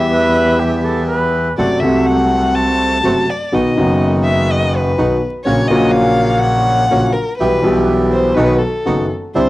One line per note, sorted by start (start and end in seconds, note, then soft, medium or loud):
0.00 1.48 E2 medium
0.00 1.48 E3 medium
0.00 1.48 G3 soft
0.00 1.48 B3 soft
0.00 1.49 B3 medium
0.00 1.49 E4 medium
0.00 1.49 G4 medium
0.00 1.10 E5 medium
0.10 0.61 B4 medium
0.59 0.86 G4 medium
0.84 1.06 A4 medium
1.06 1.53 B4 medium
1.58 1.78 F#1 medium
1.58 1.79 F#2 soft
1.58 1.78 C3 soft
1.58 1.79 F#3 soft
1.58 1.78 A3 soft
1.58 1.79 A3 soft
1.58 1.78 C4 soft
1.58 1.79 F#4 medium
1.58 1.79 F#4 soft
1.58 1.82 D5 medium
1.80 2.98 C2 medium
1.80 2.98 C3 medium
1.80 2.98 F#3 medium
1.80 2.98 A3 medium
1.80 2.98 C4 medium
1.80 2.98 F#4 medium
1.80 2.99 F#4 medium
1.80 2.07 E5 medium
2.06 2.56 F#5 medium
2.55 3.32 A5 medium
3.03 3.25 F#1 medium
3.03 3.24 F#2 soft
3.03 3.24 C3 soft
3.03 3.24 F#3 soft
3.03 3.24 A3 soft
3.03 3.25 C4 soft
3.03 3.24 F#4 soft
3.03 3.25 F#4 medium
3.30 3.57 D5 medium
3.52 3.73 B1 soft
3.52 3.73 B1 medium
3.52 3.73 B2 soft
3.52 3.73 D#3 soft
3.52 3.73 F#3 soft
3.52 3.73 B3 soft
3.52 3.73 D#4 soft
3.52 3.73 F#4 soft
3.52 3.73 F#4 medium
3.52 4.02 D#5 medium
3.76 4.92 F#1 medium
3.76 4.92 F#2 medium
3.76 4.92 D#3 medium
3.76 4.92 F#3 medium
3.76 4.92 B3 medium
3.76 4.93 B3 medium
3.76 4.92 D#4 medium
3.76 4.92 F#4 medium
3.76 4.93 F#4 medium
4.24 4.52 E5 medium
4.51 4.78 D#5 medium
4.77 5.24 B4 medium
4.97 5.18 B1 soft
4.97 5.18 B1 medium
4.97 5.18 B2 soft
4.97 5.18 D#3 soft
4.97 5.18 F#3 soft
4.97 5.18 B3 soft
4.97 5.19 B3 soft
4.97 5.18 D#4 soft
4.97 5.18 F#4 soft
4.97 5.19 F#4 soft
5.45 5.66 A#1 medium
5.45 5.67 A#1 soft
5.45 5.66 A#2 medium
5.45 5.66 C#3 soft
5.45 5.66 F#3 soft
5.45 5.66 A#3 soft
5.45 5.67 A#3 soft
5.45 5.66 C#4 soft
5.45 5.66 F#4 medium
5.45 5.67 F#4 soft
5.45 5.69 C#5 medium
5.68 6.85 A#1 medium
5.68 6.86 A#2 medium
5.68 6.85 C#3 medium
5.68 6.85 F#3 medium
5.68 6.85 A#3 medium
5.68 6.86 A#3 medium
5.68 6.85 C#4 medium
5.68 6.85 F#4 medium
5.68 5.93 D#5 medium
5.72 6.87 F#4 medium
5.91 6.40 F5 medium
6.39 7.14 F#5 medium
6.90 7.12 A#1 medium
6.90 7.12 A#1 soft
6.90 7.12 A#2 soft
6.90 7.12 C#3 soft
6.90 7.12 F#3 soft
6.90 7.11 A#3 soft
6.90 7.12 A#3 soft
6.90 7.11 C#4 soft
6.90 7.11 F#4 medium
6.90 7.12 F#4 soft
7.13 7.38 A#4 medium
7.38 7.60 B1 soft
7.38 7.61 B1 soft
7.38 7.61 B2 soft
7.38 7.60 E3 soft
7.38 7.61 G3 soft
7.38 7.60 B3 soft
7.38 7.61 B3 soft
7.38 7.60 E4 soft
7.38 7.60 G4 soft
7.38 7.61 G4 soft
7.38 7.84 B4 medium
7.62 8.33 B1 medium
7.62 8.33 B2 medium
7.62 8.32 E3 medium
7.62 8.33 G3 medium
7.62 8.33 B3 medium
7.62 8.34 B3 medium
7.62 8.33 E4 medium
7.62 8.33 G4 medium
7.62 8.34 G4 medium
8.12 8.36 C5 medium
8.35 8.57 B1 medium
8.35 8.58 B2 medium
8.35 8.57 D#3 medium
8.35 8.57 F#3 medium
8.35 8.57 B3 medium
8.35 8.57 D#4 medium
8.35 8.57 F#4 medium
8.35 8.60 B4 medium
8.58 9.09 A4 medium
8.85 9.06 F#1 soft
8.85 9.07 F#1 medium
8.85 9.07 F#2 soft
8.85 9.07 D#3 soft
8.85 9.07 F#3 soft
8.85 9.06 B3 soft
8.85 9.07 B3 soft
8.85 9.07 D#4 soft
8.85 9.07 F#4 soft
9.35 9.49 C2 medium
9.35 9.49 C2 soft
9.35 9.49 C3 soft
9.35 9.49 D3 soft
9.35 9.49 G3 soft
9.35 9.49 C4 soft
9.35 9.49 D4 soft
9.35 9.49 E4 soft
9.35 9.49 E4 medium
9.35 9.49 C5 medium